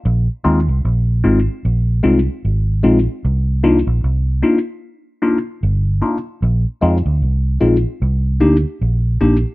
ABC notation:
X:1
M:4/4
L:1/16
Q:"Swing 16ths" 1/4=75
K:Cm
V:1 name="Tine electric piano"
z2 [A,CEF]2 z2 [A,CEF]2 z2 [A,CEF]2 z2 [A,CEF]2 | z2 [B,DEF]2 z2 [B,DEF]2 z2 [B,DEF]2 z2 [B,DEF]2 | z2 [A,CEF]2 z2 [A,CEF]2 z2 [B,DEG]2 z2 [B,DEG]2 |]
V:2 name="Fingered electric bass" clef=bass
B,,, z E,, C,, B,,,2 A,,, z B,,,2 C,, z A,,,2 B,,, z | C,,3 B,,, C,,2 z6 G,,,2 z2 | B,,, z F,, D,, C,,2 B,,, z C,,2 D,, z B,,,2 B,,, z |]